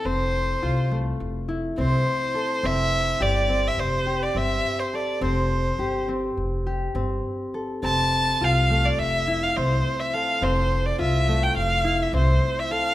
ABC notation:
X:1
M:9/8
L:1/16
Q:3/8=70
K:F
V:1 name="Violin"
c6 z6 c6 | e4 d3 e c3 d e3 c d2 | c6 z12 | a4 f3 d e3 f c3 e f2 |
c3 d e3 g f3 e c3 e f2 |]
V:2 name="Harp"
C4 F2 A,4 E2 C4 A2 | C4 G2 C4 G2 C4 A2 | C4 G2 C4 G2 C4 A2 | C4 F2 A,4 E2 C4 A2 |
C4 F2 A,4 E2 C4 A2 |]
V:3 name="Upright bass" clef=bass
F,,,4 C,,4 F,,,4 C,,2 z4 | F,,,4 G,,,4 F,,,4 G,,,2 z4 | F,,,4 G,,,4 F,,,4 G,,,2 z4 | F,,,4 C,,4 F,,,4 C,,2 z4 |
F,,,4 C,,4 F,,,4 C,,2 z4 |]